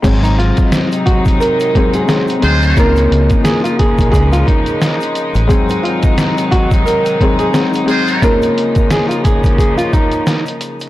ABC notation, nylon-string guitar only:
X:1
M:4/4
L:1/16
Q:"Swing 16ths" 1/4=88
K:Db
V:1 name="Nylon-string guitar"
z E F2 z2 G z B3 A z4 | B4 A F A2 A F E3 z3 | z E F2 z2 G z B3 A z4 | B4 A F A2 A F E3 z3 |]